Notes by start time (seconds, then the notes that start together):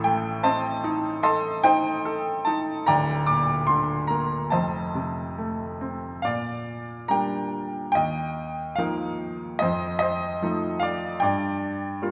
Already playing: A1 A2
0.04 A3 G5
0.43 C4 C5 D#5 A5
0.84 D#4
1.23 A4 D#5 A5 C6
1.64 D#4 C5 D#5 G5
2.05 A4
2.45 D#4 A5
2.86 D1 D2 D5 G5 A#5
3.27 A#2 D6
3.67 D3 C6
4.07 A#3 A#5
4.50 F1 F2 C5 D#5 A5
4.95 C3
5.38 A3
5.81 C4
6.22 A#2 D5 F5
7.08 G3 A#3 D4 G5 A#5
7.92 D#2 D#5 G5
8.76 F3 A#3 D#4 A#4 F5
9.59 F2 C5 D#5
9.99 C5 D#5
10.42 F3 A3 D#4
10.79 D5 F5
11.20 G2 D5 G5
12.02 G3 A#3 F4